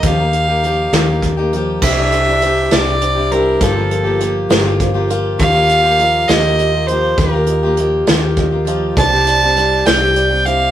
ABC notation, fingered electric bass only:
X:1
M:6/8
L:1/8
Q:3/8=67
K:Eblyd
V:1 name="Fingered electric bass" clef=bass
E,,3 E,,3 | C,,3 C,,3 | G,,,3 G,,,3 | E,,3 E,,3 |
E,,3 E,,3 | C,,3 C,,3 |]